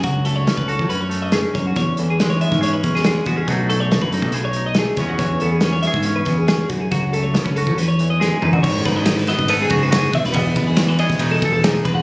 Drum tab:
CC |----------------|----------------|----------------|----------------|
RD |----------------|----------------|----------------|----------------|
HH |x-x-x-x-x-x-x-x-|x-x-x-x-x-x-x-x-|x-x-x-x-x-x-x-x-|x-x-x-x-x-x-x-x-|
SD |----o-------o---|----o--o---oo---|----o-o-----o-o-|----o-o-----o---|
T2 |----------------|----------------|----------------|----------------|
FT |----------------|----------------|----------------|----------------|
BD |o----o-o------o-|o------o--o---o-|o----o-o------o-|o------o--o---o-|

CC |----------------|x---------------|----------------|
RD |----------------|--x-x-x-x-x-x-x-|x-x-x-x-x-x-x-x-|
HH |x-x-x-x-x-x-----|----------------|----------------|
SD |----o-------o---|--o-ooo-----o--o|----o--o----o---|
T2 |--------------o-|----------------|----------------|
FT |---------------o|----------------|----------------|
BD |o----o-o--------|o-o----o--o---o-|o-o----o--o---o-|